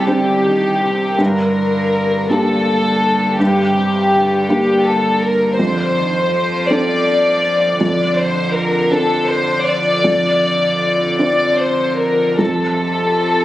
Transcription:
Already playing: C2
0.06 D3 C4 D4 G4
0.44 D#3
0.82 C3
1.18 G2 D3 A#4
2.30 D3 A#3 D4 G4 A4
3.40 G2 D3 G4
3.77 C3
4.13 D3
4.49 A#3 D4 G4
4.85 A4
5.22 A#4
5.58 F2 D3 C5
5.96 D#3
6.33 F3
6.70 C4 D4 A4 D5
7.80 F2 D3 D5
8.17 C5
8.54 A#4
8.91 C4 D4 A4
9.28 C5
9.66 D5
10.04 F2
11.19 C4 D4 C5 D5
11.59 C5
11.99 A#4
12.39 F2 C3 A4

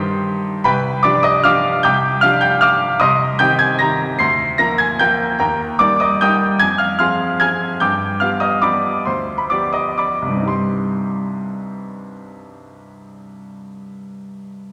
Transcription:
Already playing: G2 D#3 D#4 G4 C5 G5 C6
0.64 C2 B4 G5 B5
1.03 F3 D4 G4 D5 D6
1.23 D#5 D#6
1.44 F3 D4 G4 F5 D6 F6
1.83 C2 G5 D6 G6
2.21 F3 D4 G4 F5 F6
2.41 G5 G6
2.61 F5 D6 F6
3.00 C2 D#5 C6 D#6
3.39 D#3 C4 G4 G5 G6
3.59 G#5 G#6
3.79 D#3 C4 G4 A#5 A#6
4.19 D2 C6 C7
4.58 F3 A#3 A#4 A#5 A#6
4.78 G#5 G#6
4.99 F3 A#3 A#4 G5 G6
5.39 D#2 A#4 G5 A#5
5.79 G3 D#4 A#4 D5 D6
6.00 D#5 D#6
6.21 G3 D#4 A#4 G5 D#6 G6
6.59 F2 G#5 G#6
6.78 F5 F6
6.99 F3 C4 G#4 F5 C6 F6
7.40 F3 C4 G#4 G#5 F6 G#6
7.80 G2 G5 D6 G6
8.20 F3 B3 G4 F5 F6
8.40 D#5 D#6
8.62 F3 B3 G4 D5 B5 D6
9.05 D2 C5 C6
9.38 B5
9.50 F3 B3 G4 D5 D6
9.73 D#5 D#6
9.98 D5 B5 D6
10.22 C2
10.26 G2
10.31 G3
10.35 C4
10.40 D#4
10.44 G4 C6

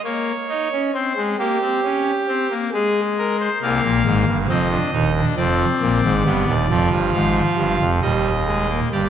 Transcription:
0.05 A#3 C#5
0.49 D#4
0.72 C#4
0.94 C4 C5
1.17 G#3
1.39 A#3 G4
1.62 C4
1.84 C#4
2.28 C4
2.51 A#3
2.73 G#3 G#4
3.18 A#4
3.40 C5
3.62 C2 C3 A#3 F5
3.84 A#1 A#2
4.05 G#1 G#2
4.27 G1 G2
4.49 F1 F2 C4 D#5
4.71 D4
4.93 D#1 D#2 D#4
5.16 D4
5.36 F1 F2 C4 D5
5.82 A#1 A#2
6.03 G#1 G#2
6.25 G1 G2 B3
6.47 D#1 D#2
6.69 F1 F2 F3
6.91 G1 G2
7.13 G#1 G#2 F5
7.57 G1 G2
7.79 F1 F2
8.02 D#1 D#2 G3 D#5
8.47 G#3
8.69 A#3
8.92 G1 G2 G4 D5

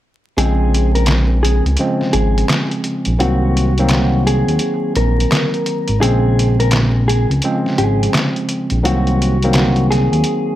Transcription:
0.37 A#1 C#3 F3 G#3 C4 G#4, closed hi-hat
0.74 closed hi-hat
0.95 A#4, closed hi-hat
1.06 snare, clap, closed hi-hat
1.43 G#4, closed hi-hat
1.66 C#2, closed hi-hat
1.77 C#3 F3 G#3 C4, closed hi-hat
2.01 snare
2.13 G#1 G#4, closed hi-hat
2.38 closed hi-hat
2.49 snare, clap, closed hi-hat
2.71 closed hi-hat
2.84 closed hi-hat
3.05 A#1, closed hi-hat
3.18 C2 D#3 F#3 A#3 C4 F#4, closed hi-hat
3.57 closed hi-hat
3.78 D#3 F#3 A#3 C4, closed hi-hat
3.89 snare, clap, closed hi-hat
4.27 G#4, closed hi-hat
4.48 D#2, closed hi-hat
4.59 closed hi-hat
4.96 A#1 A#4, closed hi-hat
5.20 closed hi-hat
5.32 snare, clap, closed hi-hat
5.54 closed hi-hat
5.66 closed hi-hat
5.88 G#1, closed hi-hat
6.01 A#1 C#3 F3 G#3 C4 G#4, closed hi-hat
6.39 closed hi-hat
6.60 A#4, closed hi-hat
6.71 snare, clap, closed hi-hat
7.08 G#4, closed hi-hat
7.30 C#2, closed hi-hat
7.42 C#3 F3 G#3 C4, closed hi-hat
7.66 snare
7.78 G#1 G#4, closed hi-hat
8.03 closed hi-hat
8.14 snare, clap, closed hi-hat
8.36 closed hi-hat
8.49 closed hi-hat
8.70 A#1, closed hi-hat
8.83 C2 D#3 F#3 A#3 C4 F#4, closed hi-hat
9.07 closed hi-hat
9.22 closed hi-hat
9.42 D#3 F#3 A#3 C4, closed hi-hat
9.53 snare, clap, closed hi-hat
9.76 closed hi-hat
9.91 G#4, snare, closed hi-hat
10.13 D#2, closed hi-hat
10.24 closed hi-hat

